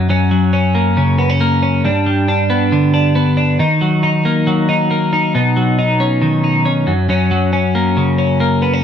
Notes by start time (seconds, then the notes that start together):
0.09 F#2 C#4
0.31 F#3
0.53 C#4
0.75 A#3
0.97 C#3
1.19 B3
1.30 C#4
1.41 A#3
1.62 C#4
1.84 G2 D4
2.06 G3
2.28 D4
2.50 B3
2.72 D3
2.94 D4
3.15 B3
3.37 D4
3.59 D#3 D#4
3.81 F#3
4.03 D#4
4.25 A#3
4.47 F#3
4.69 D#4
4.91 A#3
5.13 D#4
5.35 B2 D#4
5.57 F#3
5.79 D#4
6.00 C#4
6.22 D#3
6.44 D#4
6.65 C#4
6.87 F#2
7.09 F#2 C#4
7.31 F#3
7.53 C#4
7.75 A#3
7.97 C#3
8.18 C#4
8.40 A#3
8.62 B3
8.73 C#4